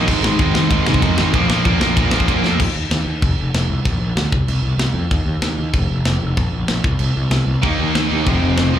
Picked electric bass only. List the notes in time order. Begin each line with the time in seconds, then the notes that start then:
0.08 G#1
0.25 G#1
0.39 G#1
0.55 G#1
0.70 G#1
0.87 C2
1.02 F2
1.17 G#1
1.33 A#1
1.50 A#1
1.65 A#1
1.80 A#1
1.97 A#1
2.12 A#1
2.28 A#1
2.44 F2
2.60 D#2
2.75 D#2
2.91 D#2
3.06 D#2
3.22 F1
3.38 F1
3.54 F1
3.69 C2
3.85 A#1
4.00 A#1
4.16 D2
4.32 C2
4.48 C2
4.63 C2
4.78 C2
4.94 F2
5.11 D#2
5.26 D#2
5.42 D#2
5.58 D#2
5.74 F1
5.90 F1
6.06 F1
6.21 F1
6.37 A#1
6.53 A#1
6.69 A#1
6.84 C2
7.00 C2
7.16 C2
7.31 C2
7.47 C2
7.63 D#2
7.79 D#2
7.95 D#2
8.11 D#2
8.27 F1
8.42 F1
8.58 F1
8.74 C2